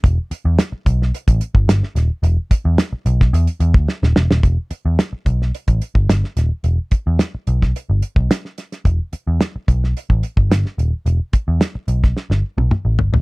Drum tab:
HH |x-x-x-x-xxx-x-x-|x-x-x-x-xxx-----|x-x-x-x-xxx-x-x-|x-x-x-x-x-x-x-xx|
SD |----o--o----ooo-|----o--o----oooo|----o--o----ooo-|----o--o----oooo|
T1 |----------------|----------------|----------------|----------------|
T2 |----------------|----------------|----------------|----------------|
FT |----------------|----------------|----------------|----------------|
BD |o-----o--o-o----|--o----o---o----|o-----o--o-o----|--o----o---o----|

HH |x-x-x-x-x-x-x-x-|x-x-x-x---------|
SD |----o--o----oo--|----o--ooo------|
T1 |----------------|-----------o----|
T2 |----------------|------------o---|
FT |----------------|--------------oo|
BD |o-----o--o-o----|--o----o--------|